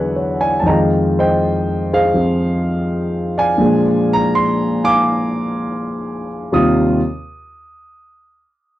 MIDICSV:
0, 0, Header, 1, 2, 480
1, 0, Start_track
1, 0, Key_signature, -3, "major"
1, 0, Tempo, 750939
1, 428, Time_signature, 4, 2, 24, 8
1, 1377, Tempo, 729927
1, 5743, End_track
2, 0, Start_track
2, 0, Title_t, "Grand piano"
2, 0, Program_c, 0, 0
2, 0, Control_c, 0, 64, 127
2, 0, Note_on_c, 0, 40, 69
2, 0, Note_on_c, 0, 50, 46
2, 0, Note_on_c, 0, 54, 37
2, 0, Note_on_c, 0, 56, 63
2, 0, Note_on_c, 0, 64, 48
2, 0, Note_on_c, 0, 66, 75
2, 0, Note_on_c, 0, 68, 42
2, 0, Note_on_c, 0, 71, 46
2, 0, Note_on_c, 0, 74, 58
2, 0, Note_on_c, 0, 76, 97
2, 0, Note_on_c, 0, 78, 78
2, 0, Note_on_c, 0, 80, 76
2, 103, Note_on_c, 0, 73, 46
2, 246, Note_off_c, 0, 80, 0
2, 253, Note_off_c, 0, 71, 0
2, 253, Note_off_c, 0, 74, 0
2, 260, Note_on_c, 0, 80, 78
2, 263, Note_on_c, 0, 74, 48
2, 359, Note_off_c, 0, 73, 0
2, 382, Note_on_c, 0, 81, 56
2, 395, Note_off_c, 0, 80, 0
2, 397, Note_on_c, 0, 41, 51
2, 417, Note_on_c, 0, 51, 46
2, 418, Note_off_c, 0, 50, 0
2, 419, Note_off_c, 0, 81, 0
2, 422, Note_off_c, 0, 40, 0
2, 425, Note_off_c, 0, 54, 0
2, 425, Note_off_c, 0, 56, 0
2, 425, Note_off_c, 0, 66, 0
2, 427, Note_on_c, 0, 75, 52
2, 427, Note_on_c, 0, 82, 72
2, 428, Note_on_c, 0, 79, 57
2, 429, Note_off_c, 0, 64, 0
2, 438, Control_c, 0, 64, 0
2, 439, Note_off_c, 0, 76, 0
2, 440, Note_off_c, 0, 68, 0
2, 441, Note_on_c, 0, 56, 49
2, 442, Note_off_c, 0, 78, 0
2, 463, Note_on_c, 0, 65, 52
2, 501, Note_off_c, 0, 82, 0
2, 519, Note_off_c, 0, 74, 0
2, 558, Control_c, 0, 64, 127
2, 755, Note_off_c, 0, 75, 0
2, 758, Note_off_c, 0, 79, 0
2, 760, Note_on_c, 0, 72, 61
2, 764, Note_on_c, 0, 75, 56
2, 768, Note_on_c, 0, 79, 76
2, 1209, Note_off_c, 0, 79, 0
2, 1226, Note_off_c, 0, 72, 0
2, 1236, Note_on_c, 0, 68, 58
2, 1236, Note_on_c, 0, 72, 52
2, 1240, Note_on_c, 0, 77, 87
2, 1367, Note_on_c, 0, 53, 44
2, 1371, Note_off_c, 0, 68, 0
2, 1375, Note_on_c, 0, 60, 38
2, 1380, Note_on_c, 0, 68, 43
2, 1686, Note_off_c, 0, 75, 0
2, 2160, Note_off_c, 0, 72, 0
2, 2162, Note_off_c, 0, 77, 0
2, 2181, Note_on_c, 0, 77, 62
2, 2182, Note_on_c, 0, 74, 64
2, 2189, Note_on_c, 0, 80, 89
2, 2314, Note_off_c, 0, 53, 0
2, 2314, Note_on_c, 0, 46, 60
2, 2315, Note_off_c, 0, 41, 0
2, 2324, Note_on_c, 0, 53, 50
2, 2326, Note_off_c, 0, 51, 0
2, 2327, Note_off_c, 0, 56, 0
2, 2330, Note_off_c, 0, 60, 0
2, 2333, Note_off_c, 0, 68, 0
2, 2337, Note_on_c, 0, 56, 57
2, 2340, Control_c, 0, 64, 0
2, 2349, Note_off_c, 0, 65, 0
2, 2349, Note_on_c, 0, 62, 65
2, 2471, Control_c, 0, 64, 127
2, 2676, Note_off_c, 0, 80, 0
2, 2679, Note_on_c, 0, 82, 96
2, 2711, Note_off_c, 0, 82, 0
2, 2822, Note_on_c, 0, 84, 89
2, 2894, Note_off_c, 0, 84, 0
2, 3108, Note_off_c, 0, 74, 0
2, 3108, Note_off_c, 0, 77, 0
2, 3144, Note_on_c, 0, 77, 62
2, 3145, Note_on_c, 0, 80, 61
2, 3149, Note_on_c, 0, 86, 103
2, 4083, Note_off_c, 0, 77, 0
2, 4083, Note_off_c, 0, 80, 0
2, 4085, Note_off_c, 0, 86, 0
2, 4249, Note_off_c, 0, 46, 0
2, 4250, Note_on_c, 0, 55, 57
2, 4251, Note_on_c, 0, 48, 53
2, 4252, Note_on_c, 0, 39, 64
2, 4254, Note_off_c, 0, 53, 0
2, 4256, Note_on_c, 0, 65, 71
2, 4260, Note_off_c, 0, 56, 0
2, 4260, Note_on_c, 0, 87, 74
2, 4266, Note_off_c, 0, 62, 0
2, 4267, Control_c, 0, 64, 0
2, 4559, Note_off_c, 0, 48, 0
2, 4559, Note_off_c, 0, 55, 0
2, 4560, Note_off_c, 0, 39, 0
2, 4562, Note_off_c, 0, 65, 0
2, 4573, Note_off_c, 0, 87, 0
2, 5743, End_track
0, 0, End_of_file